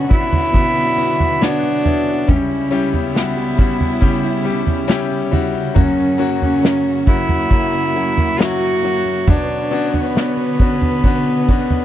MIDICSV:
0, 0, Header, 1, 6, 480
1, 0, Start_track
1, 0, Key_signature, 2, "minor"
1, 0, Tempo, 870827
1, 1259, Time_signature, 4, 2, 24, 8
1, 3656, Tempo, 883652
1, 6489, End_track
2, 0, Start_track
2, 0, Title_t, "Cello"
2, 0, Program_c, 0, 42
2, 0, Note_on_c, 0, 61, 102
2, 60, Note_off_c, 0, 61, 0
2, 63, Note_on_c, 0, 64, 105
2, 788, Note_on_c, 0, 62, 104
2, 796, Note_off_c, 0, 64, 0
2, 1265, Note_on_c, 0, 61, 87
2, 1273, Note_off_c, 0, 62, 0
2, 1624, Note_on_c, 0, 59, 84
2, 1632, Note_off_c, 0, 61, 0
2, 2940, Note_off_c, 0, 59, 0
2, 3182, Note_on_c, 0, 61, 84
2, 3518, Note_off_c, 0, 61, 0
2, 3541, Note_on_c, 0, 61, 99
2, 3875, Note_off_c, 0, 61, 0
2, 3896, Note_on_c, 0, 64, 100
2, 4617, Note_on_c, 0, 66, 112
2, 4626, Note_off_c, 0, 64, 0
2, 5103, Note_on_c, 0, 62, 96
2, 5111, Note_off_c, 0, 66, 0
2, 5461, Note_on_c, 0, 59, 99
2, 5469, Note_off_c, 0, 62, 0
2, 6489, Note_off_c, 0, 59, 0
2, 6489, End_track
3, 0, Start_track
3, 0, Title_t, "Grand piano"
3, 0, Program_c, 1, 0
3, 0, Control_c, 1, 64, 127
3, 0, Note_on_c, 1, 35, 51
3, 0, Note_on_c, 1, 42, 61
3, 0, Note_on_c, 1, 50, 66
3, 0, Note_on_c, 1, 59, 65
3, 0, Note_on_c, 1, 61, 62
3, 0, Note_on_c, 1, 62, 89
3, 0, Note_on_c, 1, 66, 73
3, 0, Note_on_c, 1, 73, 73
3, 48, Note_off_c, 1, 59, 0
3, 48, Note_on_c, 1, 59, 68
3, 49, Note_off_c, 1, 61, 0
3, 49, Note_on_c, 1, 61, 68
3, 53, Note_off_c, 1, 62, 0
3, 53, Note_on_c, 1, 62, 72
3, 54, Note_off_c, 1, 66, 0
3, 54, Note_on_c, 1, 66, 76
3, 282, Note_off_c, 1, 59, 0
3, 283, Note_off_c, 1, 61, 0
3, 285, Note_off_c, 1, 62, 0
3, 286, Note_off_c, 1, 66, 0
3, 290, Note_on_c, 1, 59, 70
3, 294, Note_on_c, 1, 61, 64
3, 298, Note_on_c, 1, 62, 60
3, 301, Note_on_c, 1, 66, 75
3, 523, Note_off_c, 1, 59, 0
3, 526, Note_off_c, 1, 61, 0
3, 528, Note_off_c, 1, 62, 0
3, 530, Note_off_c, 1, 66, 0
3, 531, Note_on_c, 1, 59, 63
3, 535, Note_on_c, 1, 61, 55
3, 537, Note_on_c, 1, 62, 52
3, 541, Note_on_c, 1, 64, 64
3, 764, Note_off_c, 1, 59, 0
3, 766, Note_off_c, 1, 61, 0
3, 767, Note_off_c, 1, 62, 0
3, 769, Note_off_c, 1, 64, 0
3, 777, Note_on_c, 1, 59, 94
3, 780, Note_off_c, 1, 73, 0
3, 780, Note_on_c, 1, 73, 90
3, 783, Note_on_c, 1, 62, 86
3, 786, Note_on_c, 1, 66, 97
3, 1006, Note_off_c, 1, 59, 0
3, 1008, Note_off_c, 1, 73, 0
3, 1009, Note_off_c, 1, 62, 0
3, 1011, Note_off_c, 1, 66, 0
3, 1016, Note_on_c, 1, 59, 70
3, 1019, Note_on_c, 1, 73, 72
3, 1022, Note_on_c, 1, 62, 62
3, 1026, Note_on_c, 1, 64, 79
3, 1234, Note_off_c, 1, 35, 0
3, 1234, Note_off_c, 1, 42, 0
3, 1245, Note_off_c, 1, 59, 0
3, 1247, Note_off_c, 1, 73, 0
3, 1248, Note_off_c, 1, 62, 0
3, 1249, Note_off_c, 1, 64, 0
3, 1254, Note_on_c, 1, 55, 86
3, 1254, Note_on_c, 1, 61, 68
3, 1255, Note_on_c, 1, 49, 58
3, 1256, Note_on_c, 1, 37, 54
3, 1257, Note_on_c, 1, 64, 75
3, 1261, Note_on_c, 1, 67, 90
3, 1266, Control_c, 1, 64, 0
3, 1268, Note_off_c, 1, 50, 0
3, 1364, Control_c, 1, 64, 127
3, 1483, Note_off_c, 1, 55, 0
3, 1484, Note_off_c, 1, 61, 0
3, 1485, Note_off_c, 1, 64, 0
3, 1487, Note_off_c, 1, 67, 0
3, 1491, Note_on_c, 1, 55, 91
3, 1492, Note_on_c, 1, 61, 94
3, 1496, Note_on_c, 1, 64, 87
3, 1500, Note_on_c, 1, 67, 104
3, 1721, Note_off_c, 1, 55, 0
3, 1723, Note_off_c, 1, 61, 0
3, 1725, Note_off_c, 1, 64, 0
3, 1727, Note_off_c, 1, 67, 0
3, 1729, Note_on_c, 1, 55, 77
3, 1732, Note_on_c, 1, 61, 68
3, 1736, Note_on_c, 1, 64, 63
3, 1737, Note_on_c, 1, 66, 77
3, 1961, Note_off_c, 1, 55, 0
3, 1963, Note_off_c, 1, 61, 0
3, 1965, Note_off_c, 1, 64, 0
3, 1965, Note_off_c, 1, 66, 0
3, 1969, Note_on_c, 1, 55, 68
3, 1974, Note_on_c, 1, 61, 70
3, 1976, Note_on_c, 1, 64, 70
3, 1978, Note_on_c, 1, 66, 83
3, 2199, Note_off_c, 1, 55, 0
3, 2203, Note_off_c, 1, 61, 0
3, 2205, Note_off_c, 1, 64, 0
3, 2205, Note_off_c, 1, 66, 0
3, 2207, Note_on_c, 1, 55, 85
3, 2211, Note_on_c, 1, 61, 82
3, 2214, Note_on_c, 1, 64, 82
3, 2215, Note_on_c, 1, 67, 95
3, 2435, Note_off_c, 1, 55, 0
3, 2440, Note_off_c, 1, 61, 0
3, 2443, Note_off_c, 1, 64, 0
3, 2444, Note_off_c, 1, 67, 0
3, 2444, Note_on_c, 1, 55, 75
3, 2448, Note_on_c, 1, 61, 66
3, 2451, Note_on_c, 1, 64, 62
3, 2454, Note_on_c, 1, 67, 86
3, 2678, Note_off_c, 1, 55, 0
3, 2680, Note_off_c, 1, 61, 0
3, 2682, Note_off_c, 1, 64, 0
3, 2683, Note_off_c, 1, 67, 0
3, 2688, Note_on_c, 1, 55, 103
3, 2690, Note_on_c, 1, 61, 113
3, 2692, Note_on_c, 1, 64, 113
3, 2697, Note_on_c, 1, 67, 127
3, 2917, Note_off_c, 1, 55, 0
3, 2918, Note_off_c, 1, 61, 0
3, 2923, Note_off_c, 1, 64, 0
3, 2925, Note_off_c, 1, 67, 0
3, 2925, Note_on_c, 1, 55, 87
3, 2926, Note_on_c, 1, 61, 70
3, 2931, Note_on_c, 1, 64, 88
3, 2932, Note_on_c, 1, 66, 97
3, 3153, Note_off_c, 1, 49, 0
3, 3154, Note_off_c, 1, 37, 0
3, 3159, Note_off_c, 1, 55, 0
3, 3160, Note_off_c, 1, 61, 0
3, 3162, Note_off_c, 1, 64, 0
3, 3163, Note_off_c, 1, 66, 0
3, 3163, Note_on_c, 1, 54, 85
3, 3166, Note_on_c, 1, 58, 72
3, 3168, Note_on_c, 1, 49, 63
3, 3169, Note_on_c, 1, 42, 57
3, 3169, Note_on_c, 1, 61, 79
3, 3171, Note_on_c, 1, 66, 96
3, 3185, Control_c, 1, 64, 0
3, 3286, Control_c, 1, 64, 127
3, 3398, Note_off_c, 1, 54, 0
3, 3399, Note_off_c, 1, 58, 0
3, 3401, Note_off_c, 1, 61, 0
3, 3402, Note_off_c, 1, 66, 0
3, 3406, Note_on_c, 1, 54, 100
3, 3409, Note_on_c, 1, 58, 86
3, 3412, Note_on_c, 1, 61, 82
3, 3415, Note_on_c, 1, 66, 110
3, 3639, Note_off_c, 1, 54, 0
3, 3641, Note_off_c, 1, 58, 0
3, 3643, Note_off_c, 1, 61, 0
3, 3644, Note_off_c, 1, 66, 0
3, 3647, Note_on_c, 1, 54, 76
3, 3653, Note_on_c, 1, 58, 68
3, 3654, Note_on_c, 1, 61, 70
3, 3657, Note_on_c, 1, 66, 73
3, 3878, Note_off_c, 1, 54, 0
3, 3880, Note_off_c, 1, 58, 0
3, 3881, Note_off_c, 1, 61, 0
3, 3883, Note_off_c, 1, 66, 0
3, 3889, Note_on_c, 1, 54, 73
3, 3893, Note_on_c, 1, 58, 70
3, 3895, Note_on_c, 1, 61, 73
3, 3898, Note_on_c, 1, 66, 89
3, 4119, Note_off_c, 1, 54, 0
3, 4121, Note_off_c, 1, 58, 0
3, 4122, Note_off_c, 1, 61, 0
3, 4124, Note_off_c, 1, 66, 0
3, 4128, Note_on_c, 1, 54, 75
3, 4129, Note_on_c, 1, 58, 65
3, 4133, Note_on_c, 1, 61, 65
3, 4136, Note_on_c, 1, 64, 77
3, 4360, Note_off_c, 1, 54, 0
3, 4360, Note_off_c, 1, 58, 0
3, 4362, Note_off_c, 1, 61, 0
3, 4363, Note_off_c, 1, 64, 0
3, 4368, Note_on_c, 1, 54, 62
3, 4368, Note_on_c, 1, 58, 63
3, 4374, Note_on_c, 1, 61, 61
3, 4376, Note_on_c, 1, 66, 71
3, 4594, Note_off_c, 1, 54, 0
3, 4599, Note_off_c, 1, 58, 0
3, 4602, Note_off_c, 1, 61, 0
3, 4602, Note_on_c, 1, 54, 102
3, 4604, Note_off_c, 1, 66, 0
3, 4607, Note_on_c, 1, 58, 90
3, 4610, Note_on_c, 1, 61, 90
3, 4611, Note_on_c, 1, 64, 109
3, 4836, Note_off_c, 1, 54, 0
3, 4839, Note_off_c, 1, 58, 0
3, 4840, Note_off_c, 1, 61, 0
3, 4841, Note_off_c, 1, 64, 0
3, 4848, Note_on_c, 1, 54, 75
3, 4851, Note_on_c, 1, 58, 63
3, 4857, Note_on_c, 1, 61, 72
3, 4859, Note_on_c, 1, 66, 86
3, 5068, Note_off_c, 1, 42, 0
3, 5068, Note_off_c, 1, 49, 0
3, 5079, Note_off_c, 1, 54, 0
3, 5080, Note_off_c, 1, 58, 0
3, 5083, Note_off_c, 1, 61, 0
3, 5084, Note_off_c, 1, 66, 0
3, 5088, Note_on_c, 1, 59, 80
3, 5091, Note_on_c, 1, 73, 73
3, 5093, Note_on_c, 1, 47, 53
3, 5093, Note_on_c, 1, 54, 52
3, 5097, Note_on_c, 1, 62, 70
3, 5097, Note_on_c, 1, 66, 95
3, 5102, Control_c, 1, 64, 0
3, 5203, Control_c, 1, 64, 127
3, 5318, Note_off_c, 1, 59, 0
3, 5319, Note_off_c, 1, 73, 0
3, 5322, Note_off_c, 1, 62, 0
3, 5322, Note_off_c, 1, 66, 0
3, 5328, Note_on_c, 1, 59, 96
3, 5329, Note_on_c, 1, 61, 86
3, 5332, Note_on_c, 1, 62, 78
3, 5336, Note_on_c, 1, 66, 104
3, 5557, Note_off_c, 1, 59, 0
3, 5557, Note_off_c, 1, 61, 0
3, 5559, Note_off_c, 1, 62, 0
3, 5561, Note_off_c, 1, 66, 0
3, 5570, Note_on_c, 1, 59, 70
3, 5571, Note_on_c, 1, 61, 61
3, 5574, Note_on_c, 1, 62, 67
3, 5577, Note_on_c, 1, 66, 83
3, 5797, Note_off_c, 1, 59, 0
3, 5798, Note_off_c, 1, 61, 0
3, 5799, Note_off_c, 1, 62, 0
3, 5801, Note_off_c, 1, 66, 0
3, 5807, Note_on_c, 1, 59, 73
3, 5811, Note_on_c, 1, 61, 72
3, 5813, Note_on_c, 1, 62, 75
3, 5816, Note_on_c, 1, 66, 82
3, 6036, Note_off_c, 1, 59, 0
3, 6038, Note_off_c, 1, 61, 0
3, 6040, Note_off_c, 1, 62, 0
3, 6041, Note_off_c, 1, 66, 0
3, 6049, Note_on_c, 1, 59, 90
3, 6052, Note_on_c, 1, 61, 74
3, 6055, Note_on_c, 1, 62, 79
3, 6056, Note_on_c, 1, 66, 93
3, 6279, Note_off_c, 1, 59, 0
3, 6281, Note_off_c, 1, 61, 0
3, 6283, Note_off_c, 1, 62, 0
3, 6283, Note_off_c, 1, 66, 0
3, 6290, Note_on_c, 1, 59, 77
3, 6292, Note_on_c, 1, 61, 73
3, 6296, Note_on_c, 1, 62, 71
3, 6301, Note_on_c, 1, 66, 86
3, 6489, Note_off_c, 1, 47, 0
3, 6489, Note_off_c, 1, 54, 0
3, 6489, Note_off_c, 1, 59, 0
3, 6489, Note_off_c, 1, 61, 0
3, 6489, Note_off_c, 1, 62, 0
3, 6489, Note_off_c, 1, 66, 0
3, 6489, End_track
4, 0, Start_track
4, 0, Title_t, "Steel-string acoustic guitar"
4, 0, Program_c, 2, 25
4, 0, Note_on_c, 2, 47, 70
4, 0, Note_on_c, 2, 61, 51
4, 0, Note_on_c, 2, 66, 59
4, 63, Note_on_c, 2, 62, 59
4, 180, Note_off_c, 2, 61, 0
4, 182, Note_on_c, 2, 61, 54
4, 297, Note_off_c, 2, 47, 0
4, 303, Note_on_c, 2, 47, 76
4, 414, Note_off_c, 2, 62, 0
4, 421, Note_on_c, 2, 62, 65
4, 535, Note_off_c, 2, 66, 0
4, 541, Note_on_c, 2, 66, 60
4, 773, Note_off_c, 2, 62, 0
4, 780, Note_on_c, 2, 62, 51
4, 796, Note_off_c, 2, 61, 0
4, 893, Note_off_c, 2, 66, 0
4, 900, Note_on_c, 2, 66, 57
4, 1011, Note_off_c, 2, 62, 0
4, 1018, Note_on_c, 2, 62, 60
4, 1136, Note_on_c, 2, 61, 57
4, 1250, Note_off_c, 2, 47, 0
4, 1252, Note_on_c, 2, 49, 81
4, 1306, Note_off_c, 2, 62, 0
4, 1307, Note_off_c, 2, 66, 0
4, 1377, Note_on_c, 2, 64, 53
4, 1496, Note_on_c, 2, 67, 60
4, 1512, Note_off_c, 2, 61, 0
4, 1615, Note_on_c, 2, 61, 51
4, 1730, Note_off_c, 2, 64, 0
4, 1736, Note_on_c, 2, 64, 59
4, 1851, Note_off_c, 2, 67, 0
4, 1857, Note_on_c, 2, 67, 58
4, 1972, Note_off_c, 2, 64, 0
4, 1978, Note_on_c, 2, 64, 63
4, 2096, Note_off_c, 2, 61, 0
4, 2098, Note_on_c, 2, 61, 54
4, 2211, Note_off_c, 2, 49, 0
4, 2217, Note_on_c, 2, 49, 82
4, 2333, Note_off_c, 2, 64, 0
4, 2340, Note_on_c, 2, 64, 63
4, 2457, Note_off_c, 2, 67, 0
4, 2463, Note_on_c, 2, 67, 57
4, 2576, Note_off_c, 2, 61, 0
4, 2578, Note_on_c, 2, 61, 53
4, 2693, Note_off_c, 2, 64, 0
4, 2816, Note_off_c, 2, 67, 0
4, 2822, Note_on_c, 2, 67, 61
4, 2940, Note_on_c, 2, 64, 58
4, 3054, Note_off_c, 2, 61, 0
4, 3057, Note_on_c, 2, 61, 56
4, 3178, Note_on_c, 2, 42, 80
4, 3225, Note_off_c, 2, 49, 0
4, 3227, Note_off_c, 2, 64, 0
4, 3228, Note_off_c, 2, 67, 0
4, 3299, Note_off_c, 2, 61, 0
4, 3299, Note_on_c, 2, 61, 61
4, 3414, Note_on_c, 2, 66, 56
4, 3531, Note_on_c, 2, 58, 55
4, 3649, Note_off_c, 2, 61, 0
4, 3651, Note_on_c, 2, 61, 61
4, 3767, Note_off_c, 2, 66, 0
4, 3769, Note_on_c, 2, 66, 62
4, 3888, Note_off_c, 2, 61, 0
4, 3890, Note_on_c, 2, 61, 62
4, 4003, Note_off_c, 2, 58, 0
4, 4009, Note_on_c, 2, 58, 60
4, 4120, Note_off_c, 2, 42, 0
4, 4126, Note_on_c, 2, 42, 87
4, 4247, Note_off_c, 2, 61, 0
4, 4249, Note_on_c, 2, 61, 70
4, 4366, Note_off_c, 2, 66, 0
4, 4484, Note_off_c, 2, 58, 0
4, 4491, Note_on_c, 2, 58, 56
4, 4609, Note_off_c, 2, 61, 0
4, 4728, Note_on_c, 2, 66, 65
4, 4850, Note_on_c, 2, 61, 60
4, 4967, Note_off_c, 2, 58, 0
4, 4974, Note_on_c, 2, 58, 59
4, 5090, Note_off_c, 2, 42, 0
4, 5093, Note_on_c, 2, 47, 82
4, 5141, Note_off_c, 2, 58, 0
4, 5331, Note_off_c, 2, 66, 0
4, 5449, Note_on_c, 2, 62, 54
4, 5465, Note_off_c, 2, 61, 0
4, 5569, Note_on_c, 2, 61, 64
4, 5687, Note_on_c, 2, 66, 59
4, 5807, Note_off_c, 2, 61, 0
4, 5809, Note_on_c, 2, 61, 58
4, 5927, Note_off_c, 2, 62, 0
4, 5929, Note_on_c, 2, 62, 55
4, 6042, Note_off_c, 2, 47, 0
4, 6049, Note_on_c, 2, 47, 83
4, 6168, Note_off_c, 2, 61, 0
4, 6171, Note_on_c, 2, 61, 62
4, 6291, Note_off_c, 2, 66, 0
4, 6293, Note_on_c, 2, 66, 61
4, 6413, Note_off_c, 2, 62, 0
4, 6415, Note_on_c, 2, 62, 57
4, 6489, Note_off_c, 2, 47, 0
4, 6489, Note_off_c, 2, 61, 0
4, 6489, Note_off_c, 2, 62, 0
4, 6489, Note_off_c, 2, 66, 0
4, 6489, End_track
5, 0, Start_track
5, 0, Title_t, "String section"
5, 0, Program_c, 3, 48
5, 0, Note_on_c, 3, 50, 65
5, 0, Note_on_c, 3, 59, 64
5, 0, Note_on_c, 3, 66, 81
5, 1241, Note_off_c, 3, 50, 0
5, 1242, Note_off_c, 3, 66, 0
5, 1243, Note_off_c, 3, 59, 0
5, 1255, Note_on_c, 3, 55, 72
5, 1256, Note_on_c, 3, 49, 76
5, 1259, Note_on_c, 3, 64, 82
5, 3156, Note_off_c, 3, 55, 0
5, 3158, Note_off_c, 3, 64, 0
5, 3172, Note_on_c, 3, 58, 60
5, 3173, Note_on_c, 3, 66, 74
5, 5071, Note_off_c, 3, 49, 0
5, 5072, Note_off_c, 3, 58, 0
5, 5073, Note_off_c, 3, 66, 0
5, 5096, Note_on_c, 3, 71, 84
5, 5096, Note_on_c, 3, 73, 65
5, 5099, Note_on_c, 3, 50, 69
5, 6041, Note_off_c, 3, 73, 0
5, 6056, Note_on_c, 3, 59, 67
5, 6489, Note_off_c, 3, 50, 0
5, 6489, Note_off_c, 3, 59, 0
5, 6489, Note_off_c, 3, 71, 0
5, 6489, End_track
6, 0, Start_track
6, 0, Title_t, "Drums"
6, 60, Note_on_c, 9, 36, 104
6, 115, Note_off_c, 9, 36, 0
6, 178, Note_on_c, 9, 43, 74
6, 234, Note_off_c, 9, 43, 0
6, 299, Note_on_c, 9, 36, 85
6, 354, Note_off_c, 9, 36, 0
6, 662, Note_on_c, 9, 43, 62
6, 717, Note_off_c, 9, 43, 0
6, 785, Note_on_c, 9, 38, 109
6, 840, Note_off_c, 9, 38, 0
6, 1022, Note_on_c, 9, 43, 62
6, 1077, Note_off_c, 9, 43, 0
6, 1261, Note_on_c, 9, 36, 93
6, 1262, Note_on_c, 9, 43, 93
6, 1316, Note_off_c, 9, 36, 0
6, 1317, Note_off_c, 9, 43, 0
6, 1619, Note_on_c, 9, 43, 57
6, 1674, Note_off_c, 9, 43, 0
6, 1744, Note_on_c, 9, 38, 97
6, 1799, Note_off_c, 9, 38, 0
6, 1978, Note_on_c, 9, 36, 97
6, 2033, Note_off_c, 9, 36, 0
6, 2098, Note_on_c, 9, 43, 64
6, 2153, Note_off_c, 9, 43, 0
6, 2216, Note_on_c, 9, 36, 84
6, 2271, Note_off_c, 9, 36, 0
6, 2573, Note_on_c, 9, 43, 63
6, 2628, Note_off_c, 9, 43, 0
6, 2698, Note_on_c, 9, 38, 110
6, 2754, Note_off_c, 9, 38, 0
6, 2937, Note_on_c, 9, 43, 66
6, 2992, Note_off_c, 9, 43, 0
6, 3175, Note_on_c, 9, 43, 117
6, 3176, Note_on_c, 9, 36, 84
6, 3230, Note_off_c, 9, 43, 0
6, 3231, Note_off_c, 9, 36, 0
6, 3538, Note_on_c, 9, 43, 62
6, 3593, Note_off_c, 9, 43, 0
6, 3664, Note_on_c, 9, 38, 102
6, 3719, Note_off_c, 9, 38, 0
6, 3895, Note_on_c, 9, 36, 101
6, 3949, Note_off_c, 9, 36, 0
6, 4012, Note_on_c, 9, 43, 74
6, 4067, Note_off_c, 9, 43, 0
6, 4132, Note_on_c, 9, 36, 85
6, 4186, Note_off_c, 9, 36, 0
6, 4494, Note_on_c, 9, 43, 66
6, 4548, Note_off_c, 9, 43, 0
6, 4619, Note_on_c, 9, 38, 107
6, 4673, Note_off_c, 9, 38, 0
6, 5092, Note_on_c, 9, 43, 100
6, 5093, Note_on_c, 9, 36, 85
6, 5146, Note_off_c, 9, 43, 0
6, 5147, Note_off_c, 9, 36, 0
6, 5451, Note_on_c, 9, 43, 56
6, 5505, Note_off_c, 9, 43, 0
6, 5576, Note_on_c, 9, 38, 104
6, 5631, Note_off_c, 9, 38, 0
6, 5810, Note_on_c, 9, 36, 100
6, 5864, Note_off_c, 9, 36, 0
6, 5929, Note_on_c, 9, 43, 67
6, 5983, Note_off_c, 9, 43, 0
6, 6049, Note_on_c, 9, 36, 86
6, 6103, Note_off_c, 9, 36, 0
6, 6293, Note_on_c, 9, 36, 76
6, 6347, Note_off_c, 9, 36, 0
6, 6410, Note_on_c, 9, 43, 62
6, 6464, Note_off_c, 9, 43, 0
6, 6489, End_track
0, 0, End_of_file